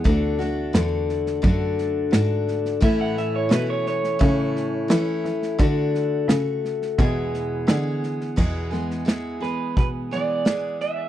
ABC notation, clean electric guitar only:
X:1
M:4/4
L:1/16
Q:1/4=87
K:Emix
V:1 name="Clean electric guitar"
z16 | e f e c B c c8 z2 | z16 | z6 B2 B2 d4 e2 |]